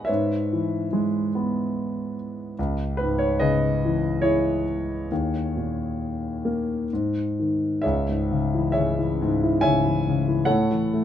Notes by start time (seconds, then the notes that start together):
Already playing: B3 D#4 B4 D#5 F#5 G#5 A#5 B5
0.05 B4 C#5 E5
0.09 G#2
0.53 E3
0.93 G#3
1.35 B3
2.59 C#2
2.97 B4
3.01 G#2
3.19 C#5
3.40 C#3 G#4 B4 D#5
3.85 E3
4.22 E4 G#4 C#5
5.11 D#2
5.57 A#2
6.45 A#3
6.93 G#2
7.39 D#3
7.82 C#2 G#4 C#5 E5
8.09 G#2
8.31 C#3
8.54 E3
8.72 G#4 C#5 E5
8.77 C#3
8.99 E3
9.22 G#2
9.43 E4
9.61 C#5 E5 G#5
9.66 C#3
9.85 E3
10.08 C#3
10.28 E3
10.45 A4 C#5 F#5
10.50 A2
10.71 E3
10.93 A3